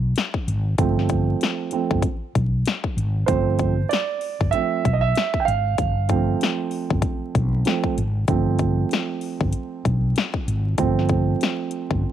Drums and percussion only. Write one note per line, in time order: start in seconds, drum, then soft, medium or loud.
0.16 snare loud
0.16 closed hi-hat medium
0.34 kick medium
0.48 closed hi-hat medium
0.78 kick loud
0.78 closed hi-hat loud
0.99 snare soft
1.09 kick medium
1.09 closed hi-hat medium
1.41 snare medium
1.41 closed hi-hat medium
1.71 closed hi-hat medium
1.91 kick loud
2.02 kick medium
2.02 closed hi-hat medium
2.35 kick medium
2.35 closed hi-hat medium
2.65 snare loud
2.65 closed hi-hat medium
2.84 kick medium
2.98 closed hi-hat medium
3.28 kick loud
3.28 closed hi-hat loud
3.59 kick medium
3.59 closed hi-hat medium
3.91 snare loud
3.91 closed hi-hat medium
4.21 open hi-hat medium
4.41 kick medium
4.53 closed hi-hat medium
4.85 kick medium
4.85 closed hi-hat medium
5.15 snare loud
5.15 closed hi-hat medium
5.34 kick medium
5.48 closed hi-hat medium
5.78 kick loud
5.78 closed hi-hat medium
6.09 kick medium
6.09 closed hi-hat medium
6.41 snare loud
6.41 closed hi-hat medium
6.71 open hi-hat medium
6.90 kick loud
7.02 kick loud
7.02 closed hi-hat medium
7.35 kick medium
7.35 closed hi-hat medium
7.65 snare loud
7.65 closed hi-hat loud
7.84 kick medium
7.98 closed hi-hat medium
8.28 kick loud
8.28 closed hi-hat loud
8.59 kick medium
8.59 closed hi-hat medium
8.91 snare loud
8.91 closed hi-hat medium
9.21 open hi-hat soft
9.41 kick medium
9.52 closed hi-hat medium
9.85 kick medium
9.85 closed hi-hat medium
10.16 snare loud
10.16 closed hi-hat medium
10.34 kick medium
10.48 closed hi-hat medium
10.78 kick loud
10.78 closed hi-hat loud
10.99 snare soft
11.09 kick medium
11.09 closed hi-hat medium
11.41 snare loud
11.41 closed hi-hat medium
11.71 closed hi-hat medium
11.91 kick medium